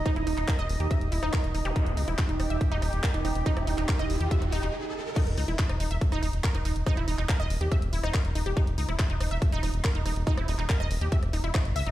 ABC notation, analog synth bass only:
X:1
M:4/4
L:1/16
Q:1/4=141
K:Eb
V:1 name="Analog synth bass" clef=bass
z E,,, E,,, E,,, z E,,, E,,, E,, z E,,, E,,, E,,, z E,,, E,,, E,,, | z E,,, _D,, E,,, z E,,, E,,, E,,, z E,,, E,,, E,,, z E,,, E,,, E,,, | z E,,, E,,, E,,, z E,,, E,,, E,, z _F,,, E,,, E,,, z4 | z E,,, _D,, E,,, z E,,, E,,, E,,, z E,,, E,,, E,,, z E,,, E,,, E,,, |
z E,,, E,,, E,,, z E,,, E,,, E,, z E,,, E,,, E,,, z E,,, E,,, E,,, | z E,,, _D,, E,,, z E,,, E,,, E,,, z E,,, E,,, E,,, z E,,, E,,, E,,, | z E,,, E,,, E,,, z E,,, E,,, E,, z E,,, E,,, E,,, z G,,, _D,, G,,, |]